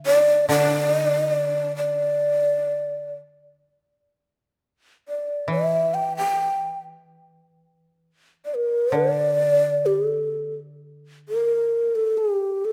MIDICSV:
0, 0, Header, 1, 3, 480
1, 0, Start_track
1, 0, Tempo, 868307
1, 38, Time_signature, 2, 2, 24, 8
1, 998, Tempo, 924499
1, 2438, Tempo, 903614
1, 3398, Tempo, 853485
1, 4838, Tempo, 917431
1, 6815, End_track
2, 0, Start_track
2, 0, Title_t, "Shakuhachi"
2, 0, Program_c, 0, 77
2, 35, Note_on_c, 0, 74, 104
2, 257, Note_off_c, 0, 74, 0
2, 269, Note_on_c, 0, 74, 97
2, 518, Note_off_c, 0, 74, 0
2, 518, Note_on_c, 0, 75, 97
2, 584, Note_off_c, 0, 75, 0
2, 584, Note_on_c, 0, 74, 97
2, 661, Note_off_c, 0, 74, 0
2, 661, Note_on_c, 0, 75, 97
2, 728, Note_off_c, 0, 75, 0
2, 728, Note_on_c, 0, 74, 97
2, 972, Note_off_c, 0, 74, 0
2, 977, Note_on_c, 0, 74, 84
2, 1684, Note_off_c, 0, 74, 0
2, 2707, Note_on_c, 0, 74, 59
2, 2918, Note_off_c, 0, 74, 0
2, 2934, Note_on_c, 0, 76, 81
2, 3162, Note_on_c, 0, 79, 74
2, 3170, Note_off_c, 0, 76, 0
2, 3279, Note_off_c, 0, 79, 0
2, 3283, Note_on_c, 0, 79, 83
2, 3626, Note_off_c, 0, 79, 0
2, 4560, Note_on_c, 0, 74, 54
2, 4618, Note_on_c, 0, 70, 78
2, 4627, Note_off_c, 0, 74, 0
2, 4843, Note_on_c, 0, 74, 99
2, 4851, Note_off_c, 0, 70, 0
2, 5315, Note_on_c, 0, 67, 67
2, 5323, Note_off_c, 0, 74, 0
2, 5425, Note_off_c, 0, 67, 0
2, 5425, Note_on_c, 0, 69, 67
2, 5676, Note_off_c, 0, 69, 0
2, 6062, Note_on_c, 0, 70, 80
2, 6410, Note_on_c, 0, 69, 76
2, 6418, Note_off_c, 0, 70, 0
2, 6528, Note_on_c, 0, 67, 75
2, 6536, Note_off_c, 0, 69, 0
2, 6776, Note_on_c, 0, 69, 94
2, 6783, Note_off_c, 0, 67, 0
2, 6815, Note_off_c, 0, 69, 0
2, 6815, End_track
3, 0, Start_track
3, 0, Title_t, "Koto"
3, 0, Program_c, 1, 107
3, 0, Note_on_c, 1, 50, 51
3, 262, Note_off_c, 1, 50, 0
3, 269, Note_on_c, 1, 50, 60
3, 1711, Note_off_c, 1, 50, 0
3, 2915, Note_on_c, 1, 52, 49
3, 4353, Note_off_c, 1, 52, 0
3, 4823, Note_on_c, 1, 50, 50
3, 6276, Note_off_c, 1, 50, 0
3, 6815, End_track
0, 0, End_of_file